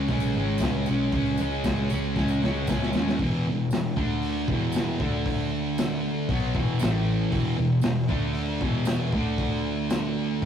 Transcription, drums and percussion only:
0.07 kick, open hi-hat, tambourine
0.20 tambourine
0.33 tambourine
0.58 kick, open hi-hat, tambourine
0.63 snare
0.86 tambourine
1.12 kick, open hi-hat, tambourine
1.26 tambourine
1.37 tambourine
1.51 tambourine
1.64 kick, snare, open hi-hat, tambourine
1.77 tambourine
1.90 tambourine
2.16 kick, snare, tambourine
2.28 tambourine
2.42 snare, tambourine
2.55 tambourine
2.67 kick, snare, tambourine
2.80 snare, tambourine
2.93 snare, tambourine
3.07 snare, tambourine
3.19 kick, open hi-hat
3.71 snare, open hi-hat, tambourine
3.97 kick
4.22 open hi-hat
4.48 kick
4.72 open hi-hat, tambourine
4.76 snare
5.00 kick
5.26 kick, open hi-hat
5.77 snare, open hi-hat, tambourine
6.29 kick, open hi-hat
6.55 kick
6.79 snare, open hi-hat, tambourine
7.32 kick, open hi-hat
7.81 snare, open hi-hat, tambourine
8.09 kick
8.34 open hi-hat
8.61 kick
8.85 snare, open hi-hat, tambourine
9.12 kick
9.38 kick, open hi-hat
9.89 snare, open hi-hat, tambourine

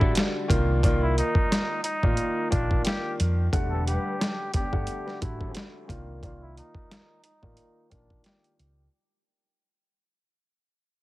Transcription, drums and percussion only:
0.01 kick
0.15 snare, closed hi-hat
0.50 kick, closed hi-hat
0.83 kick, closed hi-hat
1.18 closed hi-hat
1.35 kick
1.52 snare, closed hi-hat
1.84 closed hi-hat
2.03 kick
2.17 closed hi-hat
2.52 kick, closed hi-hat
2.71 kick
2.85 snare, closed hi-hat
3.20 closed hi-hat
3.53 kick, closed hi-hat
3.87 closed hi-hat
4.21 snare, closed hi-hat
4.54 kick, closed hi-hat
4.73 kick
4.87 closed hi-hat
5.08 snare
5.22 kick, closed hi-hat
5.41 kick
5.55 snare, closed hi-hat
5.89 kick, closed hi-hat
6.23 kick, closed hi-hat
6.57 closed hi-hat
6.75 kick
6.91 snare, closed hi-hat
7.24 closed hi-hat
7.43 kick
7.57 closed hi-hat
7.91 kick, closed hi-hat
8.10 kick
8.24 snare, closed hi-hat
8.44 closed hi-hat
8.59 closed hi-hat

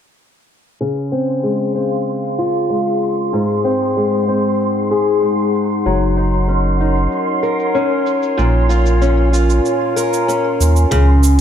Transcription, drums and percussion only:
0.82 cabasa
1.13 cabasa
1.29 cabasa
1.45 cabasa
1.77 cabasa
1.92 cabasa
2.08 cabasa
2.39 cabasa
2.55 cabasa
2.71 cabasa
3.02 cabasa
3.18 cabasa
3.34 cabasa
3.66 cabasa
3.81 cabasa
3.96 cabasa
4.28 cabasa
4.44 cabasa
4.60 cabasa
4.92 cabasa
5.07 cabasa
5.23 cabasa
5.55 cabasa
5.71 cabasa
5.86 cabasa
6.18 cabasa
6.33 cabasa
6.49 cabasa
6.80 cabasa
6.97 cabasa
7.12 cabasa
7.43 cabasa
7.59 cabasa
7.75 cabasa
8.07 cabasa
8.23 cabasa
8.39 cabasa
8.70 cabasa
8.86 cabasa
9.02 cabasa
9.34 cabasa
9.50 cabasa
9.66 cabasa
9.97 cabasa
10.13 cabasa
10.29 cabasa
10.61 cabasa
10.76 cabasa
10.92 kick, closed hi-hat, cabasa
11.24 cabasa

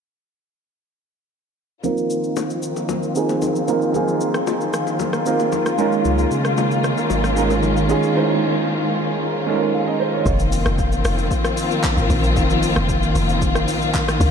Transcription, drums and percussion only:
1.84 low conga, shaker
1.97 shaker
2.10 shaker
2.24 shaker
2.36 high bongo, low bongo, shaker
2.50 shaker
2.63 shaker
2.76 high bongo, shaker
2.89 low bongo, low conga, shaker
3.03 shaker
3.15 shaker
3.29 low bongo, shaker
3.42 high bongo, low conga, shaker
3.56 shaker
3.68 low bongo, shaker
3.82 shaker
3.94 low conga, shaker
4.08 shaker
4.21 shaker
4.34 cross-stick, shaker
4.47 high bongo, low bongo, shaker
4.61 shaker
4.73 cross-stick, shaker
4.87 high bongo, shaker
4.99 low bongo, low conga, shaker
5.13 cross-stick, shaker
5.26 shaker
5.40 low bongo, shaker
5.52 high bongo, low conga, shaker
5.66 cross-stick, shaker
5.78 low bongo, shaker
5.92 shaker
6.05 low conga, shaker
6.18 shaker
6.31 shaker
6.45 cross-stick, shaker
6.57 high bongo, low bongo, shaker
6.71 shaker
6.84 cross-stick, shaker
6.98 high bongo, shaker
7.10 low bongo, low conga, shaker
7.24 cross-stick, shaker
7.36 shaker
7.50 low bongo, shaker
7.63 high bongo, low conga, shaker
7.77 shaker
7.89 low bongo, shaker
8.03 shaker
10.26 kick, shaker
10.39 shaker
10.52 open hi-hat, shaker
10.66 cross-stick, shaker
10.78 kick, shaker
10.92 shaker
11.05 cross-stick, open hi-hat, shaker
11.18 shaker
11.31 kick, shaker
11.45 cross-stick, shaker
11.57 open hi-hat, shaker
11.71 shaker
11.84 kick, clap, shaker
11.98 shaker
12.10 kick, open hi-hat, shaker
12.24 shaker
12.36 kick, shaker
12.50 shaker
12.63 open hi-hat, shaker
12.76 cross-stick, shaker
12.89 kick, shaker
13.03 shaker
13.15 open hi-hat, shaker
13.29 shaker
13.42 kick, shaker
13.55 cross-stick, shaker
13.68 open hi-hat, shaker
13.82 shaker
13.94 kick, clap, shaker
14.08 cross-stick, shaker
14.21 kick, open hi-hat, shaker

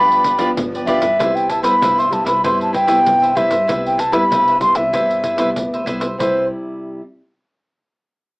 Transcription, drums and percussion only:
0.12 pandeiro
0.24 pandeiro
0.39 pandeiro
0.57 pandeiro
0.75 pandeiro
0.87 pandeiro
1.02 pandeiro
1.20 pandeiro
1.37 pandeiro
1.50 pandeiro
1.64 pandeiro
1.82 pandeiro
2.00 pandeiro
2.13 pandeiro
2.26 pandeiro
2.44 pandeiro
2.61 pandeiro
2.74 pandeiro
2.88 pandeiro
3.06 pandeiro
3.23 pandeiro
3.37 pandeiro
3.51 pandeiro
3.69 pandeiro
3.86 pandeiro
3.99 pandeiro
4.13 pandeiro
4.32 pandeiro
4.48 pandeiro
4.61 pandeiro
4.75 pandeiro
4.94 pandeiro
5.10 pandeiro
5.24 pandeiro
5.38 pandeiro
5.56 pandeiro
5.74 pandeiro
5.87 pandeiro
6.01 pandeiro
6.20 pandeiro

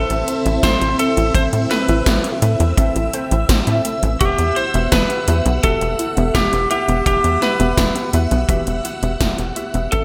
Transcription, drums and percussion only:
0.10 closed hi-hat
0.28 closed hi-hat
0.46 closed hi-hat
0.63 kick, snare, closed hi-hat
0.82 closed hi-hat
0.99 closed hi-hat
1.17 closed hi-hat
1.35 kick, closed hi-hat
1.53 closed hi-hat
1.71 snare, closed hi-hat
1.89 closed hi-hat
2.06 kick, snare, closed hi-hat
2.24 closed hi-hat
2.42 closed hi-hat
2.60 closed hi-hat
2.77 kick, closed hi-hat
2.96 closed hi-hat
3.13 closed hi-hat
3.31 closed hi-hat
3.49 kick, snare, closed hi-hat
3.67 closed hi-hat
3.85 closed hi-hat
4.03 closed hi-hat
4.21 kick, closed hi-hat
4.38 closed hi-hat
4.56 closed hi-hat
4.74 closed hi-hat
4.92 kick, snare, closed hi-hat
5.10 closed hi-hat
5.28 closed hi-hat
5.46 closed hi-hat
5.63 kick, closed hi-hat
5.81 closed hi-hat
5.99 closed hi-hat
6.17 closed hi-hat
6.35 kick, snare, closed hi-hat
6.53 closed hi-hat
6.71 closed hi-hat
6.88 closed hi-hat
7.06 kick, closed hi-hat
7.24 closed hi-hat
7.42 snare, closed hi-hat
7.60 closed hi-hat
7.77 kick, snare, closed hi-hat
7.96 closed hi-hat
8.13 closed hi-hat
8.31 closed hi-hat
8.49 kick, closed hi-hat
8.67 closed hi-hat
8.85 closed hi-hat
9.03 closed hi-hat
9.21 kick, snare, closed hi-hat
9.38 closed hi-hat
9.56 closed hi-hat
9.74 closed hi-hat
9.92 kick, closed hi-hat

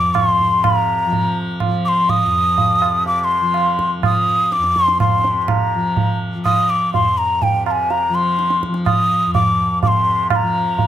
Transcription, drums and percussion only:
0.15 tabla na, tabla ge
0.40 tabla ge
0.64 tabla na, tabla ge
1.12 tabla tin, tabla ge
1.60 tabla na, tabla ge
2.09 tabla tin, tabla ge
2.58 tabla tin, tabla ge
2.82 tabla na
3.06 tabla tin
3.54 tabla na
3.79 tabla ke
4.03 tabla na, tabla ge
4.52 tabla te
4.64 tabla te
4.76 tabla ke
4.88 tabla te
5.00 tabla na, tabla ge
5.24 tabla te
5.48 tabla na, tabla ge
5.97 tabla tin, tabla ge
6.45 tabla na, tabla ge
6.94 tabla tin, tabla ge
7.42 tabla tin, tabla ge
7.66 tabla na
7.90 tabla tin
8.39 tabla te
8.50 tabla te
8.63 tabla ke
8.74 tabla te
8.86 tabla na, tabla ge
9.35 tabla tin, tabla ge
9.83 tabla tin, tabla ge
10.30 tabla na, tabla ge
10.79 tabla tin, tabla ge

